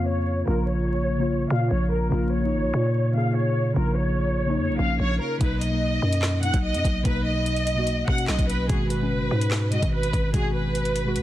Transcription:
Already playing: F2 C#3 A#3 F4
0.07 C#5
0.45 A#1 C#3 A#3 A#4
0.50 F4
0.68 C#5
1.17 C#3 A#3
1.22 F4
1.48 A#2 C#3 A#3 F5
1.53 F4
1.71 A#1 C#5
1.92 A#4
2.09 A#1 C#3 A#3 A#4
2.13 F4
2.33 C#5
2.41 C#3 A#3
2.45 D#4
2.53 G#1
2.63 A#1
2.74 A#2
3.13 C#3 A#3 F5
3.17 G#4
3.35 C#5
3.74 A#1 C#3 A#3 A#4
3.78 F4
3.97 C#5
4.45 C#3 A#3
4.50 D#4
4.58 F2
4.69 A#1
4.77 A#1 C#3 A#3 F5
4.81 C#4
5.00 A#1 C#5
5.20 A#4
5.38 B1 B2 A#3 B4, kick, closed hi-hat
5.43 D#4
5.61 D#5, closed hi-hat
5.69 B2 A#3
5.74 D#4
6.02 F#2
6.13 closed hi-hat
6.22 snare, clap
6.41 B2 A#3 F#5, closed hi-hat
6.45 D#4
6.54 B1, kick, closed hi-hat
6.64 D#5
6.74 F#2, closed hi-hat
6.85 B1, kick, closed hi-hat
7.02 B1 B2 A#3 B4, kick, closed hi-hat
7.07 D#4
7.25 D#5
7.46 closed hi-hat
7.56 closed hi-hat
7.67 closed hi-hat
7.74 B2 A#3
7.79 F#4
7.87 closed hi-hat
8.06 B2 A#3 F#5, kick
8.11 C#4
8.18 closed hi-hat
8.28 B1 D#5, snare, clap
8.39 B1, kick, closed hi-hat
8.49 B4, closed hi-hat
8.68 G#1 B2 G#3 G#4, kick, closed hi-hat
8.72 F#4
8.90 B4, closed hi-hat
8.98 B2 G#3
9.03 C#4
9.11 F#1
9.21 G#1
9.31 G#2
9.41 closed hi-hat
9.51 snare, clap
9.70 B2 G#3 D#5, closed hi-hat
9.75 F#4
9.83 G#1, kick, closed hi-hat
9.93 B4
10.03 closed hi-hat
10.13 G#1, kick, closed hi-hat
10.32 G#1 B2 G#3 G#4, kick, closed hi-hat
10.36 F#4
10.55 B4
10.75 closed hi-hat
10.85 closed hi-hat
10.96 closed hi-hat
11.03 B2 G#3
11.08 F#4
11.16 D#2, closed hi-hat

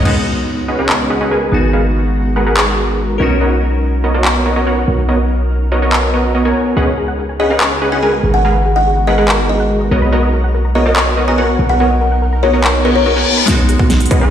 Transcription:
0.04 C#2 G#3 B3 C#4 D#4 F#4 G#4 B4 D#5 F#5, crash, impact
0.68 C#4 G#4 B4 D#5 F#5
0.79 C#4 G#4 B4 D#5 F#5
0.89 clap
1.10 C#4 G#4 B4 D#5 F#5
1.21 C#4 G#4 B4 D#5 F#5
1.31 G#3 G#4 A#4 B4 G#5
1.52 G#1 B3 D#4 F#4 A#5
1.73 G#3 G#4 A#4 B4 F5
2.36 G#3 G#4 A#4 B4 F#5
2.47 G#3 G#4 A#4 B4 F#5
2.57 clap
3.18 B1 B3 C#4 D#4 F#4 A#4 C#5 D#5
3.41 B3 F#4 A#4 C#5 D#5
4.04 B3 F#4 A#4 C#5 D#5
4.14 B3 F#4 A#4 C#5 D#5
4.25 clap
4.46 B3 F#4 A#4 C#5 D#5
4.56 B3 F#4 A#4 C#5 D#5
4.67 B3 F#4 A#4 C#5 F#5
4.88 B1 C#4
5.09 B3 F#4 A#4 C#5 D#5
5.72 B3 F#4 A#4 C#5 D#5
5.82 B3 F#4 A#4 C#5 D#5
5.93 clap
6.14 B3 F#4 A#4 C#5 D#5
6.35 B3 F#4 A#4 C#5 D#5
6.45 B3 F#4 A#4 C#5 G#5
6.77 C#2 G#3 C#4 F#4 G#4 B4 D#5 F#5
6.87 C#5
6.98 G#4
7.08 F#5
7.19 G#4
7.29 G#5
7.40 C#4 G#4 B4 D#5 F#5
7.50 C#4 G#4 B4 D#5 F#5
7.61 G#4, clap
7.71 C#5
7.82 C#4 G#4 B4 D#5 F#5
7.92 C#4 G#4 B4 D#5 F#5 G#5
8.03 G#3 G#4 A#4 B4 G#5
8.13 F#5
8.23 G#1 B3 G#4 A#5
8.34 F#5 G#5
8.45 G#3 G#4 A#4 B4 F5
8.55 B4
8.66 G#4
8.76 D#5 F#5
8.86 G#4
8.97 F#5
9.07 G#3 G#4 A#4 B4 D#5 F#5
9.18 G#3 G#4 A#4 B4 F#5
9.28 G#4, clap
9.39 B4
9.49 G#4 D#5
9.60 F#5
9.70 G#4
9.81 D#5
9.91 B1 B3 D#4 F#4 A#4 C#5 D#5
10.02 B5
10.12 B3 F#4 A#4 C#5 D#5
10.23 D#5
10.33 A#4
10.44 F#5
10.54 A#4
10.65 A#5
10.75 B3 F#4 A#4 C#5 D#5
10.86 B3 F#4 A#4 C#5 D#5
10.96 A#4, clap
11.07 D#5
11.17 B3 F#4 A#4 C#5 D#5
11.28 B3 F#4 A#4 C#5 D#5 G#5 A#5
11.38 B3 F#4 A#4 C#5 F#5 G#5
11.49 F#5
11.59 B1 A#4
11.69 F#5 B5
11.80 B3 F#4 A#4 C#5 D#5
11.91 D#5
12.01 A#4
12.12 F#5
12.22 A#4
12.33 A#5
12.43 B3 F#4 A#4 C#5 D#5
12.53 B3 F#4 A#4 C#5 D#5
12.64 A#4, clap, reverse cymbal
12.75 D#5
12.85 B3 F#4 A#4 B4 C#5 D#5
12.96 C#5 A#5
13.06 B3 F#4 A#4 C#5 D#5
13.16 B3 F#4 A#4 C#5 F#5 G#5
13.27 A#4
13.38 B5
13.46 G#3 B3 C#4 D#4 F#4 G#4 B4 D#5 F#5, kick, snare, closed hi-hat
13.59 C#5
13.69 G#4, closed hi-hat
13.79 F#5, kick
13.90 G#4, snare, closed hi-hat
14.00 G#5, closed hi-hat
14.06 closed hi-hat
14.11 C#4 G#4 B4 D#5 F#5, kick, closed hi-hat
14.21 C#4 G#4 B4 D#5 F#5

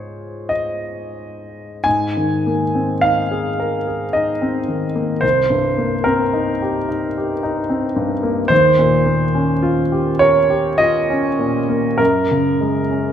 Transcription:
Already playing: G#2 G#3 D#4 F4 G#4 C5 C#5
0.49 D#5
1.84 G#2 G#5
2.17 D#3
2.46 A#3
2.75 C4
3.01 D#4 F5
3.31 G#4
3.60 A#4
3.87 G#4
4.13 D#4 D#5
4.42 C4
4.68 D#3
4.96 A#3
5.21 C2 C5
5.50 G2
5.78 A#3
6.04 C4 A#4
6.33 D#4
6.62 G4
6.89 D#4
7.18 G4
7.43 D#4
7.69 C4
7.96 G2
8.23 A#3
8.48 D#2 C5
8.78 A#2
9.06 A#3
9.35 C#4
9.63 F4
9.92 G4
10.19 A#4 C#5
10.50 G4
10.78 F4 D#5
11.10 C#4
11.39 A#2
11.69 A#3
11.98 F#2 A#4
12.31 C#3
12.61 G#3
12.90 C#4

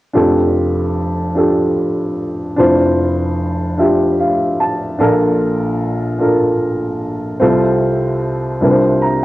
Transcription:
0.14 F1 F2 D4 F4 G4 A4
1.35 D4 F4 G4 A4
2.56 F1 F2 D4 E4 F4 C5
3.78 D4 F4 G4 E5
4.20 F5
4.60 A5
4.98 A#1 A#2 D4 F4 A4 A#4
6.19 D4 F4 A4 A#4
7.40 C2 C3 C4 F4 A4 C5
8.61 C2 C3 D4 F4 A#4 B4
8.70 C5
9.02 A#5

